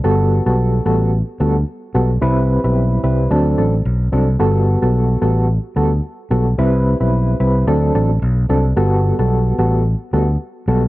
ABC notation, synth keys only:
X:1
M:4/4
L:1/16
Q:"Swing 16ths" 1/4=110
K:G
V:1 name="Synth keys"
[G,B,FA]3 [G,B,FA]3 [G,B,FA]2 z2 [G,B,FA] z3 [G,B,FA] z | [G,CEB]3 [G,CEB]3 [G,CEB]2 [F,CDA]2 [F,CDA] z3 [F,CDA] z | [G,B,FA]3 [G,B,FA]3 [G,B,FA]2 z2 [G,B,FA] z3 [G,B,FA] z | [G,CEB]3 [G,CEB]3 [G,CEB]2 [F,CDA]2 [F,CDA] z3 [F,CDA] z |
[G,B,FA]3 [G,B,FA]3 [G,B,FA]2 z2 [G,B,FA] z3 [G,B,FA] z |]